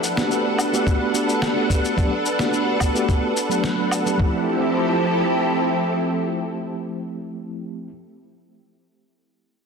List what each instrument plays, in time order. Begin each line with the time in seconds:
Already playing: string machine D4 A4 B4 F#5
0.04 shaker
0.17 tine electric piano A3 B3 D4 F#4 G4, snare, shaker
0.31 shaker
0.58 low woodblock, shaker
0.73 tine electric piano A3 B3 D4 F#4 G4, shaker
0.87 kick, shaker
1.13 tine electric piano A3 B3 D4 F#4 G4, shaker
1.29 shaker
1.42 snare, low woodblock, shaker
1.55 tine electric piano A3 B3 D4 F#4 G4
1.70 kick, shaker
1.85 shaker
1.96 tine electric piano F#3 A3 B3 D4 G4, kick, shaker
2.26 shaker
2.38 tine electric piano A3 B3 D4 F#4 G4, snare, shaker
2.53 shaker
2.80 kick, low woodblock, shaker
2.94 tine electric piano A3 B3 D4 F#4 G4, shaker
3.09 kick, shaker
3.37 shaker
3.49 tine electric piano F#3 A3 B3 D4 G4, shaker
3.63 tine electric piano F#3 A3 B3 D4 F#4, snare, shaker
3.91 low woodblock, shaker
4.05 tine electric piano F#3 A3 B3 D4 G4, shaker
4.17 tine electric piano F3 A3 C4, string machine F3 C4 E4 G4 A4, kick
4.22 tine electric piano E4 G4